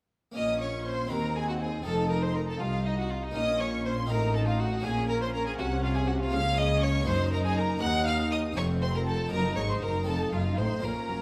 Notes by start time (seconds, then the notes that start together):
0.32 A#3 C#4 F4
0.36 A#1 A#2 C#4 D#5 D#6
0.61 C#5 C#6
0.86 C5 C6
1.07 C4 D#4 F#4
1.11 D#2 C4 A#4 A#5
1.35 G#4 G#5
1.49 F#4 F#5
1.61 G#4 G#5
1.82 C4 D#4 F4 A4 A5
1.86 F1 F2 D#4
2.11 A#4 A#5
2.22 C5 C6
2.35 A#4 A#5
2.48 A4 A5
2.60 C2 D#4 F4 F5
2.86 D#4 D#5
2.98 F#4 F#5
3.10 F4 F5
3.23 D#4 D#5
3.31 A#3 C#4 F4 D#5 D#6
3.36 A#1 A#2 C#4 D#6
3.61 C#5 C#6
3.85 C5 C6
4.06 C4 D#4 F4
4.10 A1 A2 D#4 A#4 A#5
4.34 A4 A5
4.46 F4 F5
4.59 F#4 F#5
4.80 A#3 C#4 F4 G#4 G#5
4.84 A#1 A#2 C#4 G#5
5.09 A#4 A#5
5.22 C5 C6
5.33 A#4 A#5
5.46 G#4 G#5
5.58 C2 C3 F#4 F#5
5.82 F4 F5
5.95 G#4 G#5
6.07 F#4 F#5
6.20 F4 F5
6.29 A#3 C#4 F4
6.33 C#2 C#3 F5 F6
6.57 D#5 D#6
6.82 C#5 C#6
7.03 A#3 D#4 F#4
7.07 F#1 F#2 D#4 C5 C6
7.32 A#4 A#5
7.45 G#4 G#5
7.57 A#4 A#5
7.77 A#3 D#4 F#4
7.81 D#2 D#4 F#5 F#6
8.06 F5 F6
8.31 D#5 D#6
8.52 C4 F4
8.56 F1 F2 C4 C#5 C#6
8.81 C5 C6
8.94 A#4 A#5
9.06 A4 A5
9.27 A#3 D#4 A#5
9.31 F#1 F#2 D#4 A#4
9.56 G#1 G#2 C#5 C#6
9.69 C5 C6
9.81 F#1 F#2 A#4 A#5
10.03 F2 C4 D#4 F4 A4 A5
10.07 F1 F2
10.32 F#1 F#2 F4 F5
10.57 A1 A2 C5 C6
10.79 A#1 A#2 A#3 C#4 F4 A#4 A#5
10.84 A#2 A#5
11.08 F#1 F#2